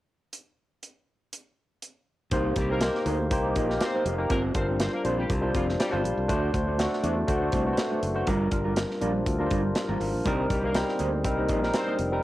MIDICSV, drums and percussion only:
0, 0, Header, 1, 2, 480
1, 0, Start_track
1, 0, Key_signature, -3, "minor"
1, 0, Tempo, 495950
1, 328, Time_signature, 4, 2, 24, 8
1, 11839, End_track
2, 0, Start_track
2, 0, Title_t, "Drums"
2, 318, Note_on_c, 9, 42, 54
2, 415, Note_off_c, 9, 42, 0
2, 801, Note_on_c, 9, 42, 53
2, 898, Note_off_c, 9, 42, 0
2, 1286, Note_on_c, 9, 42, 59
2, 1383, Note_off_c, 9, 42, 0
2, 1765, Note_on_c, 9, 42, 52
2, 1861, Note_off_c, 9, 42, 0
2, 2238, Note_on_c, 9, 42, 71
2, 2241, Note_on_c, 9, 36, 95
2, 2335, Note_off_c, 9, 42, 0
2, 2338, Note_off_c, 9, 36, 0
2, 2475, Note_on_c, 9, 42, 73
2, 2480, Note_on_c, 9, 36, 86
2, 2572, Note_off_c, 9, 42, 0
2, 2576, Note_off_c, 9, 36, 0
2, 2716, Note_on_c, 9, 42, 93
2, 2722, Note_on_c, 9, 38, 100
2, 2813, Note_off_c, 9, 42, 0
2, 2819, Note_off_c, 9, 38, 0
2, 2857, Note_on_c, 9, 38, 32
2, 2954, Note_off_c, 9, 38, 0
2, 2960, Note_on_c, 9, 42, 74
2, 3057, Note_off_c, 9, 42, 0
2, 3202, Note_on_c, 9, 42, 76
2, 3203, Note_on_c, 9, 36, 92
2, 3299, Note_off_c, 9, 42, 0
2, 3300, Note_off_c, 9, 36, 0
2, 3441, Note_on_c, 9, 42, 72
2, 3445, Note_on_c, 9, 36, 83
2, 3538, Note_off_c, 9, 42, 0
2, 3541, Note_off_c, 9, 36, 0
2, 3583, Note_on_c, 9, 38, 29
2, 3680, Note_off_c, 9, 38, 0
2, 3683, Note_on_c, 9, 42, 80
2, 3688, Note_on_c, 9, 38, 100
2, 3780, Note_off_c, 9, 42, 0
2, 3785, Note_off_c, 9, 38, 0
2, 3928, Note_on_c, 9, 42, 66
2, 4025, Note_off_c, 9, 42, 0
2, 4162, Note_on_c, 9, 42, 74
2, 4164, Note_on_c, 9, 36, 106
2, 4259, Note_off_c, 9, 42, 0
2, 4261, Note_off_c, 9, 36, 0
2, 4400, Note_on_c, 9, 42, 74
2, 4403, Note_on_c, 9, 36, 91
2, 4497, Note_off_c, 9, 42, 0
2, 4500, Note_off_c, 9, 36, 0
2, 4643, Note_on_c, 9, 42, 93
2, 4649, Note_on_c, 9, 38, 100
2, 4740, Note_off_c, 9, 42, 0
2, 4746, Note_off_c, 9, 38, 0
2, 4886, Note_on_c, 9, 42, 71
2, 4983, Note_off_c, 9, 42, 0
2, 5127, Note_on_c, 9, 42, 74
2, 5128, Note_on_c, 9, 36, 94
2, 5224, Note_off_c, 9, 36, 0
2, 5224, Note_off_c, 9, 42, 0
2, 5367, Note_on_c, 9, 42, 73
2, 5369, Note_on_c, 9, 36, 87
2, 5464, Note_off_c, 9, 42, 0
2, 5465, Note_off_c, 9, 36, 0
2, 5510, Note_on_c, 9, 38, 31
2, 5607, Note_off_c, 9, 38, 0
2, 5613, Note_on_c, 9, 42, 79
2, 5618, Note_on_c, 9, 38, 105
2, 5709, Note_off_c, 9, 42, 0
2, 5715, Note_off_c, 9, 38, 0
2, 5859, Note_on_c, 9, 42, 70
2, 5956, Note_off_c, 9, 42, 0
2, 6091, Note_on_c, 9, 36, 97
2, 6095, Note_on_c, 9, 42, 73
2, 6188, Note_off_c, 9, 36, 0
2, 6191, Note_off_c, 9, 42, 0
2, 6330, Note_on_c, 9, 36, 91
2, 6334, Note_on_c, 9, 42, 73
2, 6427, Note_off_c, 9, 36, 0
2, 6430, Note_off_c, 9, 42, 0
2, 6572, Note_on_c, 9, 42, 83
2, 6578, Note_on_c, 9, 38, 94
2, 6669, Note_off_c, 9, 42, 0
2, 6675, Note_off_c, 9, 38, 0
2, 6710, Note_on_c, 9, 38, 34
2, 6807, Note_off_c, 9, 38, 0
2, 6810, Note_on_c, 9, 42, 75
2, 6907, Note_off_c, 9, 42, 0
2, 7047, Note_on_c, 9, 42, 78
2, 7048, Note_on_c, 9, 36, 92
2, 7144, Note_off_c, 9, 42, 0
2, 7145, Note_off_c, 9, 36, 0
2, 7279, Note_on_c, 9, 42, 70
2, 7287, Note_on_c, 9, 36, 82
2, 7376, Note_off_c, 9, 42, 0
2, 7384, Note_off_c, 9, 36, 0
2, 7524, Note_on_c, 9, 42, 81
2, 7529, Note_on_c, 9, 38, 104
2, 7620, Note_off_c, 9, 42, 0
2, 7626, Note_off_c, 9, 38, 0
2, 7770, Note_on_c, 9, 42, 71
2, 7866, Note_off_c, 9, 42, 0
2, 8003, Note_on_c, 9, 42, 72
2, 8006, Note_on_c, 9, 36, 99
2, 8099, Note_off_c, 9, 42, 0
2, 8103, Note_off_c, 9, 36, 0
2, 8240, Note_on_c, 9, 42, 72
2, 8244, Note_on_c, 9, 36, 84
2, 8337, Note_off_c, 9, 42, 0
2, 8341, Note_off_c, 9, 36, 0
2, 8482, Note_on_c, 9, 42, 90
2, 8488, Note_on_c, 9, 38, 105
2, 8579, Note_off_c, 9, 42, 0
2, 8585, Note_off_c, 9, 38, 0
2, 8622, Note_on_c, 9, 38, 34
2, 8718, Note_off_c, 9, 38, 0
2, 8725, Note_on_c, 9, 42, 70
2, 8822, Note_off_c, 9, 42, 0
2, 8966, Note_on_c, 9, 36, 93
2, 8966, Note_on_c, 9, 42, 72
2, 9062, Note_off_c, 9, 42, 0
2, 9063, Note_off_c, 9, 36, 0
2, 9200, Note_on_c, 9, 42, 70
2, 9206, Note_on_c, 9, 36, 89
2, 9297, Note_off_c, 9, 42, 0
2, 9303, Note_off_c, 9, 36, 0
2, 9439, Note_on_c, 9, 42, 79
2, 9444, Note_on_c, 9, 38, 95
2, 9536, Note_off_c, 9, 42, 0
2, 9541, Note_off_c, 9, 38, 0
2, 9686, Note_on_c, 9, 46, 70
2, 9783, Note_off_c, 9, 46, 0
2, 9926, Note_on_c, 9, 36, 102
2, 9926, Note_on_c, 9, 42, 77
2, 10023, Note_off_c, 9, 36, 0
2, 10023, Note_off_c, 9, 42, 0
2, 10164, Note_on_c, 9, 36, 90
2, 10164, Note_on_c, 9, 42, 71
2, 10260, Note_off_c, 9, 42, 0
2, 10261, Note_off_c, 9, 36, 0
2, 10400, Note_on_c, 9, 42, 84
2, 10406, Note_on_c, 9, 38, 101
2, 10496, Note_off_c, 9, 42, 0
2, 10502, Note_off_c, 9, 38, 0
2, 10537, Note_on_c, 9, 38, 34
2, 10634, Note_off_c, 9, 38, 0
2, 10638, Note_on_c, 9, 42, 68
2, 10735, Note_off_c, 9, 42, 0
2, 10883, Note_on_c, 9, 42, 76
2, 10884, Note_on_c, 9, 36, 90
2, 10980, Note_off_c, 9, 36, 0
2, 10980, Note_off_c, 9, 42, 0
2, 11116, Note_on_c, 9, 42, 74
2, 11124, Note_on_c, 9, 36, 85
2, 11212, Note_off_c, 9, 42, 0
2, 11221, Note_off_c, 9, 36, 0
2, 11260, Note_on_c, 9, 38, 30
2, 11357, Note_off_c, 9, 38, 0
2, 11358, Note_on_c, 9, 42, 74
2, 11364, Note_on_c, 9, 38, 93
2, 11455, Note_off_c, 9, 42, 0
2, 11461, Note_off_c, 9, 38, 0
2, 11602, Note_on_c, 9, 42, 71
2, 11699, Note_off_c, 9, 42, 0
2, 11839, End_track
0, 0, End_of_file